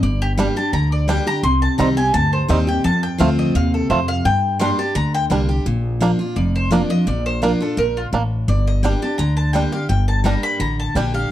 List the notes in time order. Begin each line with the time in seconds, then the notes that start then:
0.03 G1 G2 D5
0.22 G4
0.37 G3 A#3 D4 G4
0.56 D4 G4 A5
0.73 D2 D3 A#5
0.92 D5
1.08 G3 A#3 D4 G4 G5
1.27 D4 G4 A#5
1.43 C2 C3 C6
1.62 A5
1.78 C2 D#3 G3 C4 D#4 G4 A#5
1.97 C4 G4 G#5
2.14 D2 G2 A5
2.33 C5
2.48 D#2 D#3 G3 C4 D#4 G4 D#5
2.67 C4 G4 G5
2.84 F2 A5
3.03 G5
3.18 D2 F3 A3 C4 F4 F5
3.39 D#5
3.55 D#2 C3 F5
3.74 A4
3.90 F2 A3 C4 F4 C5
4.08 F5
4.25 G2 G5
4.59 G3 A#3 D4 G4 C6
4.79 D4 G4 A5
4.95 D2 D3 A#5
5.14 G5
5.30 C2 G3 A#3 D4 G4
5.49 D4 G4
5.66 A#1 A#2
6.00 F3 A#3 D4 F4
6.19 D4 F4
6.36 F1 F2 D5
6.56 C5
6.71 F3 A#3 D4 F4 D5
6.90 D4 F4 D#5
7.07 A#1 A#2 D5
7.26 C5
7.42 F3 A#3 D4 F4 A#4
7.60 D4 F4 A4
7.77 A#1 A#2 A#4
7.97 F4
8.13 A1 A2 A#3 D4
8.48 G1 G2 D5
8.67 D#5
8.83 G3 A#3 D4 G4 G5
9.02 D4 G4 A5
9.18 D2 D3 A#5
9.37 A5
9.53 G3 A#3 D4 G4 G5
9.72 D4 G4 F5
9.89 G1 G2 G5
10.08 A5
10.24 G3 A#3 D4 G4 A#5
10.43 B5
10.60 A1 D3 A#5
10.80 A5
10.95 A#1 G3 A#3 D4 G4 G5
11.14 D4 G4 F5